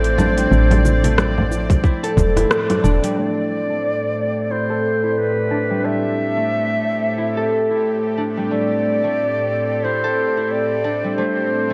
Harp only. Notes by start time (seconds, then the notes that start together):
Already playing: G3 A3 D4 E4 A4
0.18 D4
0.37 G3
0.51 A3
1.03 A3
1.84 E4
2.03 A4
2.36 E4
2.84 D4
3.03 G3
3.17 A3
3.70 A3
4.50 E4
4.70 A4
5.03 E4
5.51 D4
5.70 G3
5.84 A3
6.37 A3
7.18 E4
7.37 A4
7.70 E4
8.17 D4
8.37 G3
8.51 A3
9.04 A3
9.84 E4
10.04 A4
10.37 E4
10.84 D4
11.04 G3
11.18 A3
11.70 A3